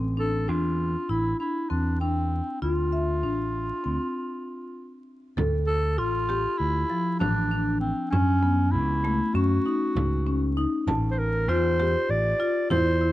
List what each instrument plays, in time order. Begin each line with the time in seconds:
Already playing: picked electric bass A1
0.17 marimba D4, clarinet A4
0.48 picked electric bass E2, marimba D4, clarinet F4
1.09 picked electric bass A1, marimba E4, clarinet E4
1.39 marimba D4, clarinet E4
1.69 picked electric bass E2, marimba C4, clarinet D4
2.00 clarinet C4, marimba D4
2.62 picked electric bass D2, clarinet F4, marimba F4
2.92 marimba E5
3.23 picked electric bass A1, marimba D4
3.84 picked electric bass D2, marimba C4
5.37 picked electric bass D2, marimba A4, frame drum
5.67 clarinet A4
5.98 picked electric bass A1, clarinet F4, marimba F4, frame drum
6.29 marimba G4, frame drum
6.58 picked electric bass D2, clarinet E4
6.90 marimba F3, frame drum
7.19 picked electric bass A1, clarinet D4, marimba D4, frame drum
7.51 marimba D4
7.80 clarinet C4
8.10 picked electric bass F#2, clarinet C#4, marimba C#4, frame drum
8.43 marimba B3
8.71 picked electric bass C#2, clarinet E4, frame drum
9.04 marimba A3, frame drum
9.34 picked electric bass F#2, marimba C#4, clarinet F#4
9.66 marimba D#4, frame drum
9.95 picked electric bass C#2, frame drum
10.27 marimba C#4
10.57 marimba D#4
10.87 picked electric bass A1, marimba A5, frame drum
11.11 clarinet C5
11.19 clarinet A#4
11.48 picked electric bass E2, marimba F4, clarinet C5, frame drum
11.80 marimba G4, frame drum
12.09 picked electric bass A1, clarinet D5
12.40 marimba F4, frame drum
12.70 picked electric bass E2, marimba E4, clarinet C5, frame drum
13.01 marimba E4